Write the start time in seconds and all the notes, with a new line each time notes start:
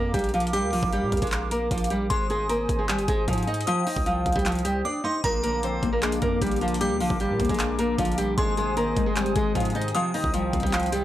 Already playing: F2 A#3 C4 A#4 F5 D6
0.14 A#1 G3 G4, kick, closed hi-hat
0.19 closed hi-hat
0.24 closed hi-hat
0.29 closed hi-hat
0.34 F3 F4, closed hi-hat
0.40 closed hi-hat
0.47 closed hi-hat
0.53 G3 G4 D6, closed hi-hat
0.63 D2
0.73 A#1 F3 F4, open hi-hat
0.83 A#1, kick
0.93 G3 G4, closed hi-hat
1.02 A#2
1.12 D2, kick, closed hi-hat
1.17 closed hi-hat
1.22 A#1 G#3 G#4, kick, closed hi-hat
1.27 closed hi-hat
1.32 clap, closed hi-hat
1.51 A#3 A#4, closed hi-hat
1.71 A#1 F3 F4, kick, closed hi-hat
1.78 closed hi-hat
1.84 closed hi-hat
1.90 G3 G4, closed hi-hat
2.10 G#1 G#3 G#4 C5 G#5 C6 D#6, kick, closed hi-hat
2.30 G#3 G#4, closed hi-hat
2.49 A#3 A#4, closed hi-hat
2.69 G#1, kick, closed hi-hat
2.79 G#3 G#4
2.89 G3 G4, clap, closed hi-hat
2.99 G1, closed hi-hat
3.08 G#1 G#3 G#4, kick, closed hi-hat
3.28 G#2 F3 F4, kick, closed hi-hat
3.33 closed hi-hat
3.38 closed hi-hat
3.43 closed hi-hat
3.47 D#4 D#5, closed hi-hat
3.54 closed hi-hat
3.61 closed hi-hat
3.67 F3 F4 G5 D#6, closed hi-hat
3.87 D#4 D#5, open hi-hat
3.96 C2, kick
4.06 F3 F4, closed hi-hat
4.26 C2, kick, closed hi-hat
4.32 C2 G3 G4, kick, closed hi-hat
4.39 closed hi-hat
4.45 F3 F4, clap, closed hi-hat
4.52 closed hi-hat
4.55 closed hi-hat
4.59 closed hi-hat
4.65 G3 G4, closed hi-hat
4.85 D4 D5 D6
5.04 D#4 D#5 C6
5.24 A#1 A#2 A#3 A#4 F5 A#5 D6, kick, closed hi-hat
5.43 D3 A#3 A#4, closed hi-hat
5.63 F3 C4 C5, closed hi-hat
5.83 A#1 A#3, kick, closed hi-hat
5.93 A#3 A#4
6.02 G#3 D4 G#4, clap, closed hi-hat
6.12 closed hi-hat
6.22 F2 A#2 A#3 A#4, kick, closed hi-hat
6.42 A#1 D3 G3 G4, kick, closed hi-hat
6.47 closed hi-hat
6.51 closed hi-hat
6.56 closed hi-hat
6.61 F3 F4, closed hi-hat
6.68 closed hi-hat
6.74 closed hi-hat
6.81 A#2 G3 G4 D6, closed hi-hat
6.91 D2
7.00 A#1 D3 F3 F4, open hi-hat
7.10 A#1, kick
7.20 F3 G3 G4, closed hi-hat
7.30 A#2
7.40 D2 A#3, kick, closed hi-hat
7.45 closed hi-hat
7.49 A#1 G#3 G#4, kick, closed hi-hat
7.54 closed hi-hat
7.59 D4, clap, closed hi-hat
7.79 A#2 A#3 A#4, closed hi-hat
7.98 A#1 D3 F3 F4, kick, closed hi-hat
8.05 closed hi-hat
8.12 closed hi-hat
8.18 F3 G3 G4, closed hi-hat
8.38 G#1 G#2 G#3 G#4 C5 G#5 C6 D#6, kick, closed hi-hat
8.57 C3 G#3 G#4, closed hi-hat
8.77 D#3 A#3 A#4, closed hi-hat
8.97 G#1 G#3, kick, closed hi-hat
9.06 G#3 G#4
9.16 G3 C4 G4, clap, closed hi-hat
9.26 G1, closed hi-hat
9.36 G#1 G#2 G#3 G#4, kick, closed hi-hat
9.55 G#2 C3 F3 F4, kick, closed hi-hat
9.60 closed hi-hat
9.65 closed hi-hat
9.70 closed hi-hat
9.75 D#3 D#4 D#5, closed hi-hat
9.82 closed hi-hat
9.88 closed hi-hat
9.95 C3 F3 F4 C5 G5 D#6, closed hi-hat
10.14 D#3 D#4 D#5, open hi-hat
10.24 C2, kick
10.34 F3 G3 F4, closed hi-hat
10.53 C2 C4, kick, closed hi-hat
10.60 C2 G3 G4, kick, closed hi-hat
10.67 closed hi-hat
10.73 F3 F4 C5, clap, closed hi-hat
10.80 closed hi-hat
10.83 closed hi-hat
10.86 closed hi-hat
10.92 C3 G3 G4, closed hi-hat